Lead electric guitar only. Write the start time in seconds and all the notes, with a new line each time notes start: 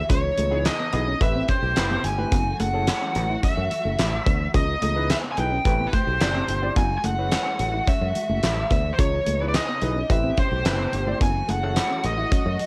0.10 C#5
0.66 D#5
0.94 D#5
1.22 E5
1.49 C5
2.04 G#5
2.60 F#5
3.44 E5
4.55 D#5
4.83 D#5
5.11 E5
5.32 G#5
5.38 G5
5.87 B4
5.94 C5
6.77 G#5
6.98 G#5
7.05 F#5
7.89 E5
8.72 E5
8.93 C5
9.00 C#5
9.48 D5
9.56 D#5
10.11 E5
10.39 C5
11.22 G#5
11.50 F#5
11.64 F#5
12.06 D#5